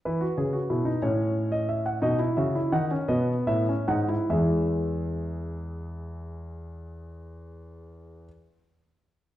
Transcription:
<<
  \new Staff \with { instrumentName = "Grand piano" } { \time 6/8 \key e \major \tempo 4. = 47 << { b'4. cis''8. dis''16 e''16 fis''16 | dis''8 e''8 fis''8 dis''8 e''8 fis''8 | <e gis e''>2.~ | <e gis e''>2. | } \\ { e'16 fis'16 gis'16 fis'16 e'16 dis'16 cis'4. | dis'16 e'16 fis'16 e'16 dis'16 cis'16 b8. cis'16 dis'16 e'16 | gis'2.~ | gis'2. | } >> }
  \new Staff \with { instrumentName = "Grand piano" } { \clef bass \time 6/8 \key e \major e8 cis8 b,8 a,4. | b,8 cis8 dis8 b,8 a,8 gis,8 | e,2.~ | e,2. | }
>>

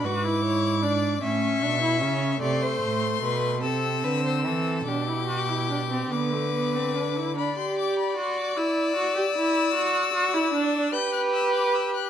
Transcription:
<<
  \new Staff \with { instrumentName = "Violin" } { \time 6/8 \key a \mixolydian \tempo 4. = 50 d'''4. cis'''4. | \key g \major c'''4. e'''4. | d'''4. d'''4. | b''16 c'''16 d'''16 b''16 c'''16 d'''16 e'''4.~ |
e'''4. g'''16 fis'''16 e'''16 d'''16 e'''16 fis'''16 | }
  \new Staff \with { instrumentName = "Violin" } { \time 6/8 \key a \mixolydian b'8 cis''8 d''8 e''4. | \key g \major d''16 c''8. b'8 a'8 b'16 c''16 a'8 | g'4. b'4. | d''2.~ |
d''4. g'4. | }
  \new Staff \with { instrumentName = "Viola" } { \time 6/8 \key a \mixolydian fis'16 e'8. d'8 cis'8 d'16 e'16 cis'8 | \key g \major a4. c'4. | d'16 e'16 fis'16 e'16 d'16 c'16 b16 a16 b16 c'16 d'16 e'16 | d'16 g'8. fis'8 e'8 fis'16 g'16 e'8 |
fis'8 fis'16 e'16 d'8 b'4. | }
  \new Staff \with { instrumentName = "Cello" } { \clef bass \time 6/8 \key a \mixolydian gis,4. a,8 b,8 cis8 | \key g \major c8 a,8 b,8 c8 d8 e8 | b,4. d4. | r2. |
r2. | }
>>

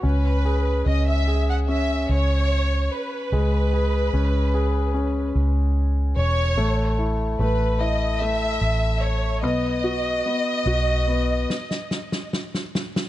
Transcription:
<<
  \new Staff \with { instrumentName = "Violin section" } { \time 4/4 \key cis \minor \tempo 4 = 73 b'4 dis''16 e''8 fis''16 e''8 cis''4 b'8~ | b'2~ b'8 r4 cis''8~ | cis''8 r8 b'8 dis''8 e''4 cis''8 dis''8~ | dis''2. r4 | }
  \new Staff \with { instrumentName = "Grand piano" } { \time 4/4 \key cis \minor cis'8 gis'8 cis'8 gis'8 cis'2 | gis8 gis'8 cis'8 gis'8 cis'2 | a8 e'8 a8 e'8 a4. b8 | fis'8 b8 fis'8 b8 r2 | }
  \new Staff \with { instrumentName = "Fingered electric bass" } { \clef bass \time 4/4 \key cis \minor cis,4 cis,4. cis,4 r8 | cis,4 cis,4. cis,4 e,,8 | a,,4 a,,4. a,,4 b,,8~ | b,,8 r8 b,,4 r2 | }
  \new DrumStaff \with { instrumentName = "Drums" } \drummode { \time 4/4 r4 r4 r4 r4 | r4 r4 r4 r4 | r4 r4 r4 r4 | r4 r4 sn16 sn16 sn16 sn16 sn16 sn16 sn16 sn16 | }
>>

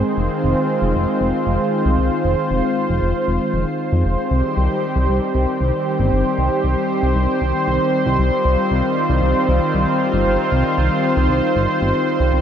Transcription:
<<
  \new Staff \with { instrumentName = "Analog synth pad" } { \time 4/4 \key c \minor \tempo 4 = 116 << { <ees aes c' c''>1~ | <ees aes c' c''>1 | <ees g c' c''>1~ | <ees g c' c''>1~ |
<ees g c' c''>1~ | <ees g c' c''>1 | } \\ { f'1~ | f'1 | g'1~ | g'1 |
f'1~ | f'1 | } >> }
  \new Staff \with { instrumentName = "Analog synth bass" } { \clef bass \time 4/4 \key c \minor r16 f,,16 r16 f,,16 r8 f,,16 f,,16 r16 f,,16 r16 f,,16 r8 c,16 c,16 | r16 f,,16 r16 f,,16 r8 f,,16 f,,16 r16 f,,16 r16 f,,16 r8 f,16 f,,16 | r16 c,16 r16 c,16 r8 c,16 c,16 r16 c,16 r16 c,16 r8 g,,16 g,,16 | r16 c,16 r16 c,16 r8 c,16 c,16 r16 c,16 r16 c,16 r8 c,16 c,16 |
r16 c,16 r16 c,16 r8 c,16 c,16 r16 c,16 r16 c,16 r8 g,,16 g,,16 | r16 c,16 r16 c,16 r8 c,16 c,16 r16 g,,16 r16 g,,16 r8 c,16 c,16 | }
>>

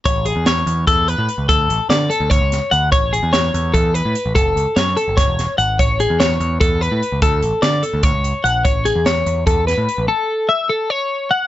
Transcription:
<<
  \new Staff \with { instrumentName = "Clean electric guitar" } { \time 7/8 \key a \major \tempo 4 = 147 cis''8 gis'8 cis''4 a'8 b'4 | a'4 d''8 a'8 cis''4 fis''8 | cis''8 gis'8 cis''4 a'8 b'4 | a'4 cis''8 a'8 cis''4 fis''8 |
cis''8 gis'8 cis''4 a'8 b'4 | a'4 d''8 a'8 cis''4 fis''8 | cis''8 gis'8 cis''4 a'8 b'4 | a'4 e''8 a'8 cis''4 fis''8 | }
  \new Staff \with { instrumentName = "Picked electric bass" } { \clef bass \time 7/8 \key a \major a,,8. e,8. e,8 e,8. a,16 r16 cis,16 | d,8 a,,16 r16 d8 r16 d,8 cis,8 r16 d,8 | a,,8. e,8. e,8 e,8. a,16 r16 a,,16 | fis,,8 cis,16 r16 fis,8 r16 fis,,8 e,,8 r16 gis,,8 |
a,,8. e,8. e,8 e,8. a,16 r16 cis,16 | d,8 a,,16 r16 d8 r16 d,8 cis,8 r16 bes,,8 | a,,8. e,8. e,8 e,8. a,16 r16 a,,16 | r2. r8 | }
  \new DrumStaff \with { instrumentName = "Drums" } \drummode { \time 7/8 <hh bd>8 hh8 <hh sn>8 hh8 <hh bd>8 hh8 hh8 | <hh bd>8 hh8 <hh sn>8 hh8 <hh bd>8 <hh sn>8 hh8 | <hh bd>8 hh8 <hh sn>8 hh8 <hh bd>8 hh8 hh8 | <hh bd>8 hh8 <hh sn>8 hh8 <hh bd sn>8 <hh sn>8 hh8 |
<hh bd>8 hh8 <hh sn>8 hh8 <hh bd>8 hh8 hh8 | <hh bd>8 hh8 <hh sn>8 hh8 <hh bd>8 hh8 hh8 | <hh bd>8 hh8 <hh sn>8 hh8 <hh bd>8 <hh sn>8 hh8 | r4 r4 r4. | }
>>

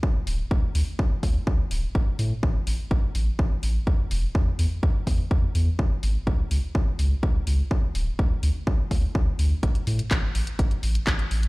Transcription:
<<
  \new Staff \with { instrumentName = "Sub bass" } { \clef bass \time 4/4 \key cis \phrygian \tempo 4 = 125 d,8 d,,8 d,8 d,8 d,8 d,8 d,8 d,,8 | a,,8 a,8 a,,8 a,,8 a,,8 a,,8 a,,8 a,,8 | e,8 e,,8 e,8 e,8 e,8 e,8 e,8 e,8 | cis,8 gis,,8 cis,8 cis,8 cis,8 cis,8 cis,8 cis,8 |
d,8 d,,8 d,8 d,8 d,8 d,8 d,8 d,8 | a,,8 a,8 a,,8 a,,8 a,,8 a,,8 a,,8 a,,8 | }
  \new DrumStaff \with { instrumentName = "Drums" } \drummode { \time 4/4 bd8 hho8 bd8 hho8 bd8 <hho bd>8 bd8 hho8 | bd8 hho8 bd8 hho8 bd8 hho8 bd8 hho8 | bd8 hho8 bd8 hho8 bd8 <hho bd>8 bd8 hho8 | bd8 hho8 bd8 hho8 bd8 hho8 bd8 hho8 |
bd8 hho8 bd8 hho8 bd8 <hho bd>8 bd8 hho8 | <hh bd>16 hh16 hho16 hh16 <hc hh bd>8 hho16 hh16 <hh bd>16 hh16 hho16 hh16 <hc hh bd>16 hh16 hho16 hh16 | }
>>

